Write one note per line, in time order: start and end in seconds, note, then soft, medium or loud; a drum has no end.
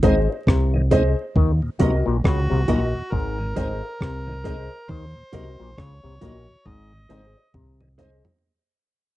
0.03 0.27 G#1 medium
0.03 0.19 G#2 medium
0.03 0.15 G#3 medium
0.03 0.15 C4 medium
0.03 0.15 D#4 medium
0.03 0.25 G#4 medium
0.03 0.18 G#4 medium
0.03 0.25 C5 medium
0.03 0.18 C5 medium
0.03 0.26 D#5 loud
0.03 0.18 D#5 medium
0.03 kick medium
0.03 closed hi-hat medium
0.30 0.37 C5 soft
0.30 0.37 D#5 soft
0.47 1.14 C2 medium
0.47 0.74 C3 medium
0.47 kick loud
0.47 cross-stick loud
0.73 0.82 G#2 medium
0.73 0.82 D#3 medium
0.73 0.81 C5 soft
0.73 0.81 D#5 soft
0.91 1.03 G#3 medium
0.91 1.03 C4 medium
0.91 1.03 D#4 medium
0.91 1.13 G#4 medium
0.91 1.06 G#4 medium
0.91 1.14 C5 medium
0.91 1.06 C5 medium
0.91 1.14 D#5 loud
0.91 1.07 D#5 medium
0.91 kick medium
0.91 closed hi-hat medium
1.36 1.59 D#2 medium
1.36 1.51 D#3 medium
1.36 kick loud
1.62 1.70 D#2 medium
1.62 1.70 A#2 medium
1.79 2.03 C2 loud
1.79 1.96 C3 medium
1.79 1.91 F#3 medium
1.79 1.91 A#3 medium
1.79 1.92 D#4 medium
1.79 2.02 F#4 medium
1.79 1.95 F#4 medium
1.79 2.02 A#4 medium
1.79 1.95 A#4 medium
1.79 2.02 D#5 loud
1.79 1.95 D#5 loud
1.79 kick loud
1.79 closed hi-hat medium
2.06 2.23 A#1 medium
2.06 2.17 A#2 medium
2.24 2.48 C#2 medium
2.24 2.40 C#3 medium
2.24 3.14 F#4 medium
2.24 kick loud
2.24 cross-stick loud
2.50 2.67 C2 medium
2.50 2.58 D#2 medium
2.50 2.58 A#2 medium
2.50 2.61 C3 medium
2.68 2.92 A#1 medium
2.68 2.84 A#2 medium
2.68 2.80 F#3 medium
2.68 2.80 A#3 medium
2.68 2.80 D#4 medium
2.68 2.90 F#4 medium
2.68 2.83 F#4 medium
2.68 2.90 A#4 medium
2.68 2.83 A#4 medium
2.68 2.91 D#5 loud
2.68 2.83 D#5 medium
2.68 kick medium
2.68 closed hi-hat medium
2.95 3.03 D#2 medium
2.95 3.03 A#2 medium
3.12 3.53 G#1 loud
3.12 3.39 G#2 medium
3.12 4.91 A#4 loud
3.12 kick loud
3.38 3.46 G#2 medium
3.38 3.47 D#3 medium
3.56 3.80 G#1 medium
3.56 3.72 G#2 medium
3.56 3.68 G#3 medium
3.56 3.68 C4 medium
3.56 3.68 D#4 medium
3.56 3.71 G#4 medium
3.56 3.79 G#4 medium
3.56 3.71 C5 medium
3.56 3.79 C5 medium
3.56 3.72 D#5 medium
3.56 3.79 D#5 loud
3.56 kick medium
3.56 closed hi-hat medium
3.83 3.90 C5 soft
3.83 3.90 D#5 soft
4.01 4.67 C2 medium
4.01 4.27 C3 medium
4.01 kick loud
4.01 cross-stick loud
4.27 4.35 G#2 medium
4.27 4.35 D#3 medium
4.27 4.34 C5 soft
4.27 4.34 D#5 soft
4.44 4.56 G#3 medium
4.44 4.57 C4 medium
4.44 4.57 D#4 medium
4.44 4.59 G#4 medium
4.44 4.67 G#4 medium
4.44 4.60 C5 medium
4.44 4.67 C5 medium
4.44 4.60 D#5 medium
4.44 4.68 D#5 loud
4.44 kick medium
4.44 closed hi-hat medium
4.89 5.13 D#2 loud
4.89 5.05 D#3 loud
4.89 5.79 C5 loud
4.89 kick loud
5.16 5.24 D#2 medium
5.16 5.23 A#2 medium
5.33 5.57 C2 loud
5.33 5.49 C3 medium
5.33 5.45 F#3 medium
5.33 5.45 A#3 medium
5.33 5.45 D#4 medium
5.33 5.48 F#4 medium
5.33 5.55 F#4 medium
5.33 5.48 A#4 loud
5.33 5.56 A#4 medium
5.33 5.48 D#5 medium
5.33 5.56 D#5 loud
5.33 kick medium
5.33 closed hi-hat medium
5.60 5.76 A#1 medium
5.60 5.71 A#2 medium
5.78 6.01 C#2 medium
5.78 5.94 C#3 medium
5.78 6.68 C#5 loud
5.78 kick loud
5.78 cross-stick loud
6.04 6.20 C2 medium
6.04 6.12 D#2 medium
6.04 6.12 A#2 medium
6.04 6.14 C3 medium
6.21 6.45 A#1 medium
6.21 6.37 A#2 medium
6.21 6.33 F#3 medium
6.21 6.33 A#3 medium
6.21 6.33 D#4 medium
6.21 6.36 F#4 medium
6.21 6.44 F#4 medium
6.21 6.44 A#4 medium
6.21 6.37 A#4 medium
6.21 6.44 D#5 loud
6.21 6.37 D#5 medium
6.21 kick loud
6.21 closed hi-hat medium
6.48 6.56 D#2 medium
6.48 6.56 A#2 medium
6.66 7.06 G#1 loud
6.66 6.92 G#2 medium
6.66 7.55 D#5 loud
6.66 kick loud
6.66 high tom medium
6.92 7.00 G#2 medium
6.92 7.00 D#3 medium
7.09 7.34 G#1 medium
7.09 7.26 G#2 medium
7.09 7.21 G#3 medium
7.09 7.22 C4 medium
7.09 7.22 D#4 medium
7.09 7.24 G#4 medium
7.09 7.32 G#4 medium
7.09 7.25 C5 medium
7.09 7.33 C5 medium
7.09 7.25 D#5 medium
7.09 7.33 D#5 loud
7.09 closed hi-hat medium
7.09 mid tom medium
7.36 7.44 C5 soft
7.36 7.44 D#5 soft
7.54 8.21 C2 medium
7.54 7.81 C3 medium
7.54 kick loud
7.54 mid tom medium
7.81 7.88 G#2 medium
7.81 7.88 D#3 medium
7.81 7.88 C5 soft
7.81 7.88 D#5 soft
7.81 mid tom medium
7.98 8.10 G#3 medium
7.98 8.10 C4 medium
7.98 8.10 D#4 medium
7.98 8.13 G#4 medium
7.98 8.20 G#4 medium
7.98 8.13 C5 medium
7.98 8.21 C5 medium
7.98 8.13 D#5 medium
7.98 8.21 D#5 loud
7.98 closed hi-hat medium
7.98 floor tom loud
8.25 floor tom medium